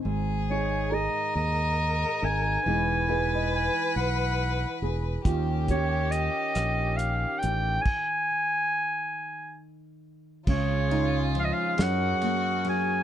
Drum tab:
CC |------|------|------|x-----|
RD |------|------|------|------|
HH |------|------|xxxxxx|------|
SD |------|------|---r--|------|
BD |------|------|oo----|o-----|

CC |x-----|
RD |-xxxxx|
HH |------|
SD |---o--|
BD |o-----|